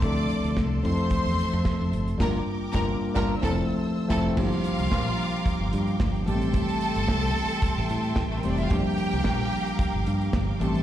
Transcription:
Already playing: string section A4 C6
0.01 fingered electric bass D2, tine electric piano F3 A3 C4 D4 A4, string section D5 D6, kick, closed hi-hat
0.17 closed hi-hat
0.29 closed hi-hat
0.44 fingered electric bass D2, closed hi-hat
0.57 fingered electric bass C2, kick, snare
0.83 fingered electric bass F2, tine electric piano F3 A3 C4 E4 A4, string section C5 E5 C6, open hi-hat
0.97 closed hi-hat
1.10 kick, closed hi-hat
1.26 fingered electric bass E2, closed hi-hat
1.39 closed hi-hat
1.53 fingered electric bass F2, closed hi-hat
1.65 kick, snare
1.81 fingered electric bass F2
1.93 fingered electric bass G1, closed hi-hat
2.07 fingered electric bass F1, closed hi-hat
2.18 fingered electric bass G1, tine electric piano G3 A#3 D4 F4 A#4, string section A#4 G5 A#5 D6, kick, snare, crash
2.72 fingered electric bass G1, tine electric piano G3 A#3 D4 F4 A#4, string section A#4 A#5, kick, snare
3.14 fingered electric bass G1, tine electric piano G3 A#3 D4 F4 A#4, string section A#4 A#5, kick, snare
3.28 string section C5 A5 E6
3.41 fingered electric bass F1, tine electric piano F3 A3 C4 E4 A4, string section A4 A5, kick, snare
4.08 fingered electric bass F1, tine electric piano F3 A3 C4 E4 A4, string section A4 A5, kick, snare, crash
4.36 fingered electric bass G1, tine electric piano F3 G3 A#3 D4 G4, string section F4 A#4 F5 G5 D6, kick, crash
4.52 closed hi-hat
4.64 closed hi-hat
4.79 fingered electric bass C2, closed hi-hat
4.92 fingered electric bass A#1, kick, snare
5.20 open hi-hat
5.33 closed hi-hat
5.46 kick, closed hi-hat
5.61 fingered electric bass G1
5.73 fingered electric bass G2, closed hi-hat
5.87 closed hi-hat
6.00 fingered electric bass G1, kick, snare
6.15 closed hi-hat
6.26 fingered electric bass A1, tine electric piano E3 G3 A3 A#3 G4, string section A4 E5 A5 C6, closed hi-hat
6.35 tine electric piano C4
6.42 closed hi-hat
6.53 kick, closed hi-hat
6.68 closed hi-hat
6.81 closed hi-hat
6.95 fingered electric bass G1, closed hi-hat
7.08 fingered electric bass C2, kick, snare
7.36 snare, open hi-hat
7.49 closed hi-hat
7.62 kick, closed hi-hat
7.78 fingered electric bass A1
7.89 fingered electric bass A2, closed hi-hat
8.04 closed hi-hat
8.16 fingered electric bass A1, kick, snare
8.31 string section A3 A4
8.38 string section A#3 A#4
8.43 fingered electric bass F1, tine electric piano E3 G3 A3 C4 G4, string section C4 C5, closed hi-hat
8.50 string section D4 D5
8.57 string section E4 E5, closed hi-hat
8.63 string section F4 F5
8.70 fingered electric bass G1, tine electric piano F3 G3 A#3 D4 G4, string section G4 A#4 F5 G5 D6, kick, closed hi-hat
8.98 closed hi-hat
9.11 fingered electric bass C2, closed hi-hat
9.24 fingered electric bass A#1, kick, snare
9.52 open hi-hat
9.66 closed hi-hat
9.79 kick, closed hi-hat
9.94 fingered electric bass G1
10.06 fingered electric bass G2, closed hi-hat
10.21 closed hi-hat
10.33 fingered electric bass G1, kick, snare
10.59 fingered electric bass A1, tine electric piano E3 G3 A3 C4 G4, string section A4 E5 A5 C6, closed hi-hat
10.75 closed hi-hat

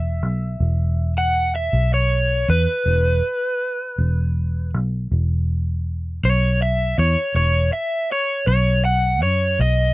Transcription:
Already playing: fingered electric bass E1, overdriven electric guitar E5
0.23 fingered electric bass B1
0.60 fingered electric bass E1
1.18 overdriven electric guitar F#5
1.55 overdriven electric guitar E5
1.73 fingered electric bass B1
1.94 overdriven electric guitar C#5
2.49 fingered electric bass E2, overdriven electric guitar B4
2.86 fingered electric bass E1
3.98 fingered electric bass E1
4.74 fingered electric bass B1
5.12 fingered electric bass E1
6.24 fingered electric bass B1, overdriven electric guitar C#5
6.62 overdriven electric guitar E5
6.98 fingered electric bass E2, overdriven electric guitar C#5
7.34 fingered electric bass E1, overdriven electric guitar C#5
7.73 overdriven electric guitar E5
8.12 overdriven electric guitar C#5
8.47 fingered electric bass B1, overdriven electric guitar C#5
8.85 overdriven electric guitar F#5
9.23 fingered electric bass F#2, overdriven electric guitar C#5
9.59 fingered electric bass B1, overdriven electric guitar D#5

